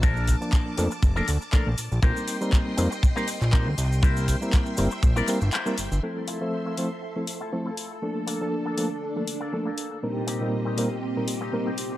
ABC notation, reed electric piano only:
X:1
M:4/4
L:1/16
Q:"Swing 16ths" 1/4=120
K:F
V:1 name="Reed electric piano"
[F,B,Da]3 [F,B,Da]3 [F,A,B,DA] z2 [F,A,B,DA] z2 [F,A,B,DA] z3 | [G,B,C_EB]3 [G,B,CEB]3 [G,B,CEB] z2 [G,B,CEB] z2 [G,B,CEB] z3 | [G,B,CEB]3 [G,B,CEB]3 [G,B,CEB] z2 [G,B,CEB] [G,B,CEB] z2 [G,B,CEB] z2 | [F,A,CEA]3 [F,A,CAe]3 [F,A,CEA] z2 [F,A,CEA] z2 [F,A,CEA] z3 |
[F,A,B,DA]3 [F,B,DA]3 [F,A,B,DA] z2 [F,A,B,DA] z2 [F,A,B,DA] z3 | [B,,G,B,C_EB]3 [B,,G,B,CEB]3 [B,,G,B,CEB] z2 [B,,G,B,CEB] z2 [B,,G,B,CEB] z3 |]